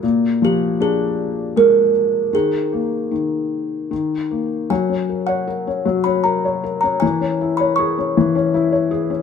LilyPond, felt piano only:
\new Staff \with { instrumentName = "Felt piano" } { \time 3/4 \key fis \mixolydian \tempo 4 = 78 ais,8 eis8 d'4 gis4 | dis8 ais8 dis4 dis8 ais8 | fis16 cis'16 ais'16 cis''16 ais'16 cis'16 fis16 cis'16 ais'16 cis''16 ais'16 cis'16 | e16 cis'16 e'16 cis''16 gis'16 cis'16 e16 cis'16 e'16 cis''16 gis'16 cis'16 | }